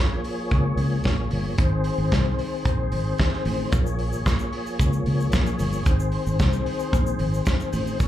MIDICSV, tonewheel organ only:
0, 0, Header, 1, 2, 480
1, 0, Start_track
1, 0, Tempo, 534283
1, 1427, Time_signature, 4, 2, 24, 8
1, 7257, End_track
2, 0, Start_track
2, 0, Title_t, "Tonewheel organ"
2, 0, Program_c, 0, 16
2, 0, Note_on_c, 0, 53, 67
2, 0, Note_on_c, 0, 58, 58
2, 0, Note_on_c, 0, 68, 61
2, 0, Note_on_c, 0, 73, 60
2, 1405, Note_off_c, 0, 53, 0
2, 1407, Note_off_c, 0, 58, 0
2, 1408, Note_off_c, 0, 73, 0
2, 1420, Note_on_c, 0, 72, 63
2, 1421, Note_on_c, 0, 60, 54
2, 1425, Note_on_c, 0, 51, 65
2, 3324, Note_off_c, 0, 72, 0
2, 3325, Note_off_c, 0, 60, 0
2, 3326, Note_off_c, 0, 51, 0
2, 3333, Note_on_c, 0, 58, 56
2, 3339, Note_on_c, 0, 53, 59
2, 3339, Note_on_c, 0, 73, 65
2, 5241, Note_off_c, 0, 58, 0
2, 5244, Note_off_c, 0, 53, 0
2, 5244, Note_off_c, 0, 73, 0
2, 5264, Note_on_c, 0, 60, 57
2, 5268, Note_on_c, 0, 51, 64
2, 5268, Note_on_c, 0, 72, 62
2, 7151, Note_off_c, 0, 68, 0
2, 7169, Note_off_c, 0, 60, 0
2, 7171, Note_off_c, 0, 51, 0
2, 7171, Note_off_c, 0, 72, 0
2, 7179, Note_on_c, 0, 73, 64
2, 7180, Note_on_c, 0, 68, 62
2, 7181, Note_on_c, 0, 58, 55
2, 7184, Note_on_c, 0, 53, 65
2, 7257, Note_off_c, 0, 53, 0
2, 7257, Note_off_c, 0, 58, 0
2, 7257, Note_off_c, 0, 68, 0
2, 7257, Note_off_c, 0, 73, 0
2, 7257, End_track
0, 0, End_of_file